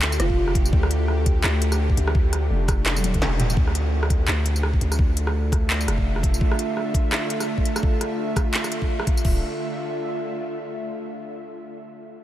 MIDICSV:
0, 0, Header, 1, 5, 480
1, 0, Start_track
1, 0, Key_signature, -1, "minor"
1, 0, Tempo, 355030
1, 986, Time_signature, 4, 2, 24, 8
1, 16547, End_track
2, 0, Start_track
2, 0, Title_t, "Soft synth lead"
2, 0, Program_c, 0, 80
2, 264, Note_on_c, 0, 65, 94
2, 745, Note_off_c, 0, 65, 0
2, 16547, End_track
3, 0, Start_track
3, 0, Title_t, "Synth drone"
3, 0, Program_c, 1, 95
3, 0, Note_on_c, 1, 50, 75
3, 0, Note_on_c, 1, 57, 97
3, 0, Note_on_c, 1, 65, 92
3, 0, Note_on_c, 1, 67, 83
3, 4806, Note_off_c, 1, 50, 0
3, 4822, Note_on_c, 1, 50, 86
3, 4825, Note_off_c, 1, 57, 0
3, 4825, Note_off_c, 1, 65, 0
3, 4852, Note_off_c, 1, 67, 0
3, 5426, Note_on_c, 1, 57, 97
3, 5971, Note_on_c, 1, 65, 87
3, 6188, Note_on_c, 1, 76, 72
3, 12490, Note_off_c, 1, 50, 0
3, 12504, Note_off_c, 1, 65, 0
3, 12506, Note_off_c, 1, 57, 0
3, 12506, Note_off_c, 1, 76, 0
3, 12506, Note_on_c, 1, 50, 75
3, 12585, Note_on_c, 1, 57, 69
3, 12661, Note_on_c, 1, 65, 79
3, 12727, Note_on_c, 1, 76, 80
3, 14370, Note_off_c, 1, 57, 0
3, 14370, Note_off_c, 1, 65, 0
3, 14372, Note_off_c, 1, 50, 0
3, 14373, Note_off_c, 1, 76, 0
3, 16547, End_track
4, 0, Start_track
4, 0, Title_t, "808-style bass"
4, 0, Program_c, 2, 38
4, 0, Note_on_c, 2, 38, 92
4, 249, Note_off_c, 2, 38, 0
4, 264, Note_on_c, 2, 29, 100
4, 969, Note_off_c, 2, 29, 0
4, 984, Note_on_c, 2, 38, 101
4, 1929, Note_off_c, 2, 38, 0
4, 1946, Note_on_c, 2, 38, 99
4, 2650, Note_off_c, 2, 38, 0
4, 2665, Note_on_c, 2, 38, 98
4, 3369, Note_off_c, 2, 38, 0
4, 3388, Note_on_c, 2, 29, 101
4, 4050, Note_off_c, 2, 29, 0
4, 4050, Note_on_c, 2, 28, 101
4, 4331, Note_off_c, 2, 28, 0
4, 4349, Note_on_c, 2, 28, 103
4, 4811, Note_off_c, 2, 28, 0
4, 4824, Note_on_c, 2, 38, 101
4, 5769, Note_off_c, 2, 38, 0
4, 5784, Note_on_c, 2, 38, 98
4, 6489, Note_off_c, 2, 38, 0
4, 6506, Note_on_c, 2, 38, 92
4, 7929, Note_off_c, 2, 38, 0
4, 7947, Note_on_c, 2, 29, 96
4, 8650, Note_off_c, 2, 29, 0
4, 12504, Note_on_c, 2, 26, 101
4, 12728, Note_off_c, 2, 26, 0
4, 16547, End_track
5, 0, Start_track
5, 0, Title_t, "Drums"
5, 26, Note_on_c, 9, 39, 116
5, 161, Note_off_c, 9, 39, 0
5, 166, Note_on_c, 9, 54, 76
5, 266, Note_off_c, 9, 54, 0
5, 266, Note_on_c, 9, 37, 82
5, 266, Note_on_c, 9, 42, 79
5, 266, Note_on_c, 9, 54, 39
5, 402, Note_off_c, 9, 37, 0
5, 402, Note_off_c, 9, 42, 0
5, 402, Note_off_c, 9, 54, 0
5, 403, Note_on_c, 9, 36, 60
5, 538, Note_off_c, 9, 36, 0
5, 643, Note_on_c, 9, 37, 53
5, 745, Note_on_c, 9, 36, 112
5, 747, Note_on_c, 9, 42, 62
5, 779, Note_off_c, 9, 37, 0
5, 880, Note_off_c, 9, 36, 0
5, 882, Note_off_c, 9, 42, 0
5, 886, Note_on_c, 9, 54, 67
5, 985, Note_on_c, 9, 36, 109
5, 1022, Note_off_c, 9, 54, 0
5, 1120, Note_off_c, 9, 36, 0
5, 1126, Note_on_c, 9, 37, 84
5, 1226, Note_on_c, 9, 42, 83
5, 1261, Note_off_c, 9, 37, 0
5, 1361, Note_off_c, 9, 42, 0
5, 1464, Note_on_c, 9, 37, 55
5, 1599, Note_off_c, 9, 37, 0
5, 1705, Note_on_c, 9, 36, 102
5, 1705, Note_on_c, 9, 42, 65
5, 1840, Note_off_c, 9, 36, 0
5, 1840, Note_off_c, 9, 42, 0
5, 1945, Note_on_c, 9, 37, 89
5, 1945, Note_on_c, 9, 39, 123
5, 2080, Note_off_c, 9, 37, 0
5, 2080, Note_off_c, 9, 39, 0
5, 2186, Note_on_c, 9, 42, 82
5, 2322, Note_off_c, 9, 42, 0
5, 2324, Note_on_c, 9, 37, 55
5, 2324, Note_on_c, 9, 54, 69
5, 2459, Note_off_c, 9, 37, 0
5, 2459, Note_off_c, 9, 54, 0
5, 2564, Note_on_c, 9, 36, 58
5, 2668, Note_on_c, 9, 42, 64
5, 2699, Note_off_c, 9, 36, 0
5, 2804, Note_off_c, 9, 42, 0
5, 2806, Note_on_c, 9, 37, 86
5, 2906, Note_on_c, 9, 36, 116
5, 2941, Note_off_c, 9, 37, 0
5, 3041, Note_off_c, 9, 36, 0
5, 3147, Note_on_c, 9, 37, 56
5, 3147, Note_on_c, 9, 42, 83
5, 3282, Note_off_c, 9, 37, 0
5, 3282, Note_off_c, 9, 42, 0
5, 3626, Note_on_c, 9, 36, 105
5, 3630, Note_on_c, 9, 37, 84
5, 3630, Note_on_c, 9, 42, 68
5, 3630, Note_on_c, 9, 54, 40
5, 3761, Note_off_c, 9, 36, 0
5, 3766, Note_off_c, 9, 37, 0
5, 3766, Note_off_c, 9, 42, 0
5, 3766, Note_off_c, 9, 54, 0
5, 3868, Note_on_c, 9, 38, 62
5, 3868, Note_on_c, 9, 39, 120
5, 4003, Note_off_c, 9, 38, 0
5, 4003, Note_off_c, 9, 39, 0
5, 4009, Note_on_c, 9, 48, 60
5, 4009, Note_on_c, 9, 54, 71
5, 4111, Note_off_c, 9, 48, 0
5, 4111, Note_off_c, 9, 54, 0
5, 4111, Note_on_c, 9, 42, 83
5, 4111, Note_on_c, 9, 48, 78
5, 4111, Note_on_c, 9, 54, 42
5, 4244, Note_on_c, 9, 36, 64
5, 4246, Note_off_c, 9, 42, 0
5, 4246, Note_off_c, 9, 48, 0
5, 4246, Note_off_c, 9, 54, 0
5, 4248, Note_on_c, 9, 42, 39
5, 4248, Note_on_c, 9, 47, 73
5, 4351, Note_on_c, 9, 38, 86
5, 4379, Note_off_c, 9, 36, 0
5, 4383, Note_off_c, 9, 42, 0
5, 4383, Note_off_c, 9, 47, 0
5, 4486, Note_off_c, 9, 38, 0
5, 4591, Note_on_c, 9, 42, 66
5, 4591, Note_on_c, 9, 45, 102
5, 4726, Note_off_c, 9, 42, 0
5, 4726, Note_off_c, 9, 45, 0
5, 4729, Note_on_c, 9, 45, 86
5, 4729, Note_on_c, 9, 54, 68
5, 4825, Note_on_c, 9, 36, 116
5, 4864, Note_off_c, 9, 45, 0
5, 4864, Note_off_c, 9, 54, 0
5, 4960, Note_off_c, 9, 36, 0
5, 4969, Note_on_c, 9, 37, 56
5, 5071, Note_on_c, 9, 42, 79
5, 5104, Note_off_c, 9, 37, 0
5, 5206, Note_off_c, 9, 42, 0
5, 5446, Note_on_c, 9, 37, 80
5, 5545, Note_on_c, 9, 36, 106
5, 5548, Note_on_c, 9, 42, 66
5, 5581, Note_off_c, 9, 37, 0
5, 5680, Note_off_c, 9, 36, 0
5, 5683, Note_off_c, 9, 42, 0
5, 5785, Note_on_c, 9, 37, 58
5, 5785, Note_on_c, 9, 39, 121
5, 5920, Note_off_c, 9, 37, 0
5, 5920, Note_off_c, 9, 39, 0
5, 6025, Note_on_c, 9, 42, 81
5, 6160, Note_off_c, 9, 42, 0
5, 6164, Note_on_c, 9, 54, 62
5, 6265, Note_on_c, 9, 37, 86
5, 6299, Note_off_c, 9, 54, 0
5, 6400, Note_off_c, 9, 37, 0
5, 6402, Note_on_c, 9, 36, 61
5, 6506, Note_on_c, 9, 42, 67
5, 6538, Note_off_c, 9, 36, 0
5, 6642, Note_off_c, 9, 42, 0
5, 6647, Note_on_c, 9, 37, 54
5, 6647, Note_on_c, 9, 54, 66
5, 6744, Note_on_c, 9, 36, 120
5, 6782, Note_off_c, 9, 37, 0
5, 6782, Note_off_c, 9, 54, 0
5, 6880, Note_off_c, 9, 36, 0
5, 6987, Note_on_c, 9, 42, 85
5, 7123, Note_off_c, 9, 42, 0
5, 7127, Note_on_c, 9, 37, 78
5, 7262, Note_off_c, 9, 37, 0
5, 7465, Note_on_c, 9, 36, 108
5, 7471, Note_on_c, 9, 37, 51
5, 7471, Note_on_c, 9, 42, 65
5, 7601, Note_off_c, 9, 36, 0
5, 7607, Note_off_c, 9, 37, 0
5, 7607, Note_off_c, 9, 42, 0
5, 7710, Note_on_c, 9, 39, 127
5, 7845, Note_off_c, 9, 39, 0
5, 7851, Note_on_c, 9, 54, 68
5, 7952, Note_on_c, 9, 37, 81
5, 7952, Note_on_c, 9, 42, 87
5, 7986, Note_off_c, 9, 54, 0
5, 8085, Note_on_c, 9, 36, 62
5, 8087, Note_off_c, 9, 37, 0
5, 8087, Note_off_c, 9, 42, 0
5, 8220, Note_off_c, 9, 36, 0
5, 8330, Note_on_c, 9, 37, 50
5, 8427, Note_on_c, 9, 36, 107
5, 8433, Note_on_c, 9, 42, 68
5, 8466, Note_off_c, 9, 37, 0
5, 8562, Note_off_c, 9, 36, 0
5, 8568, Note_off_c, 9, 42, 0
5, 8571, Note_on_c, 9, 54, 60
5, 8668, Note_on_c, 9, 36, 121
5, 8706, Note_off_c, 9, 54, 0
5, 8803, Note_off_c, 9, 36, 0
5, 8809, Note_on_c, 9, 37, 72
5, 8910, Note_on_c, 9, 42, 81
5, 8944, Note_off_c, 9, 37, 0
5, 9045, Note_off_c, 9, 42, 0
5, 9152, Note_on_c, 9, 37, 50
5, 9287, Note_off_c, 9, 37, 0
5, 9387, Note_on_c, 9, 36, 110
5, 9393, Note_on_c, 9, 42, 66
5, 9522, Note_off_c, 9, 36, 0
5, 9528, Note_off_c, 9, 42, 0
5, 9632, Note_on_c, 9, 37, 76
5, 9632, Note_on_c, 9, 39, 126
5, 9767, Note_off_c, 9, 37, 0
5, 9767, Note_off_c, 9, 39, 0
5, 9872, Note_on_c, 9, 42, 81
5, 10007, Note_off_c, 9, 42, 0
5, 10010, Note_on_c, 9, 37, 50
5, 10010, Note_on_c, 9, 54, 64
5, 10145, Note_off_c, 9, 37, 0
5, 10145, Note_off_c, 9, 54, 0
5, 10245, Note_on_c, 9, 36, 62
5, 10349, Note_on_c, 9, 42, 67
5, 10380, Note_off_c, 9, 36, 0
5, 10484, Note_off_c, 9, 42, 0
5, 10490, Note_on_c, 9, 37, 74
5, 10490, Note_on_c, 9, 54, 60
5, 10586, Note_on_c, 9, 36, 121
5, 10625, Note_off_c, 9, 37, 0
5, 10625, Note_off_c, 9, 54, 0
5, 10721, Note_off_c, 9, 36, 0
5, 10830, Note_on_c, 9, 37, 53
5, 10830, Note_on_c, 9, 42, 80
5, 10965, Note_off_c, 9, 37, 0
5, 10965, Note_off_c, 9, 42, 0
5, 11305, Note_on_c, 9, 36, 106
5, 11311, Note_on_c, 9, 37, 77
5, 11311, Note_on_c, 9, 42, 64
5, 11311, Note_on_c, 9, 54, 33
5, 11440, Note_off_c, 9, 36, 0
5, 11446, Note_off_c, 9, 37, 0
5, 11446, Note_off_c, 9, 42, 0
5, 11446, Note_off_c, 9, 54, 0
5, 11547, Note_on_c, 9, 39, 127
5, 11682, Note_off_c, 9, 39, 0
5, 11684, Note_on_c, 9, 37, 52
5, 11684, Note_on_c, 9, 54, 66
5, 11785, Note_on_c, 9, 42, 80
5, 11819, Note_off_c, 9, 37, 0
5, 11819, Note_off_c, 9, 54, 0
5, 11920, Note_off_c, 9, 42, 0
5, 11923, Note_on_c, 9, 36, 65
5, 12058, Note_off_c, 9, 36, 0
5, 12162, Note_on_c, 9, 37, 76
5, 12263, Note_on_c, 9, 36, 105
5, 12263, Note_on_c, 9, 42, 62
5, 12297, Note_off_c, 9, 37, 0
5, 12398, Note_off_c, 9, 42, 0
5, 12399, Note_off_c, 9, 36, 0
5, 12403, Note_on_c, 9, 54, 60
5, 12501, Note_on_c, 9, 49, 84
5, 12504, Note_on_c, 9, 36, 106
5, 12538, Note_off_c, 9, 54, 0
5, 12637, Note_off_c, 9, 49, 0
5, 12639, Note_off_c, 9, 36, 0
5, 16547, End_track
0, 0, End_of_file